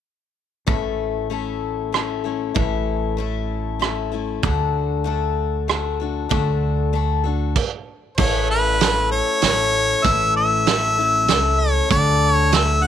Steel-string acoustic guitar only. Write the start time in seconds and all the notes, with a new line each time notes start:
0.67 A2 E3 A3 C#4 E4 A4
1.30 A3 C#4 E4 A4
1.92 A3 C#4 E4 A4
2.24 A3 C#4 E4 A4
2.55 A2 E3 A3 C#4 E4 A4
3.17 A3 C#4 E4 A4
3.79 A3 C#4 E4 A4
4.12 A3 C#4 E4 A4
4.43 D3 A3 D4 F#4 A4
5.04 A3 D4 F#4 A4
5.68 A3 D4 F#4 A4
6.00 D4 F#4 A4
6.29 D3 A3 D4 F#4 A4
6.93 A3 D4 F#4 A4
7.24 D4 F#4 A4
8.18 A2 E3 A3 C#4 E4 A4
8.79 A3 C#4 E4 A4
9.42 A3 C#4 E4 A4
10.04 A2 E3 A3 C#4 E4 A4
10.66 A3 C#4 E4 A4
10.98 A3 C#4 E4 A4
11.28 A3 C#4 E4 A4
11.89 D3 A3 D4 F#4 A4
12.51 A3 D4 F#4 A4
12.82 F#4 A4